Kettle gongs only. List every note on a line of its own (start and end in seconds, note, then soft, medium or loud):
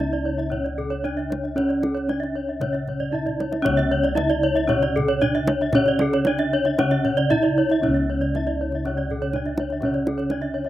0.00 2.59 C#2 medium
0.00 1.00 C#4 medium
1.03 1.11 D4 soft
1.56 3.08 C#4 medium
2.08 2.16 D4 soft
2.60 4.13 C#3 medium
3.11 3.19 D4 soft
3.63 5.17 C#4 medium
3.68 6.76 C#2 loud
4.17 4.25 D4 soft
5.22 5.30 D4 soft
5.74 7.26 C#4 medium
6.79 8.30 C#3 medium
7.31 7.39 D4 soft
7.82 9.30 C#4 medium
7.88 10.69 C#2 loud
8.34 8.42 D4 soft
9.35 9.43 D4 soft
9.83 10.69 C#4 medium
10.30 10.38 D4 soft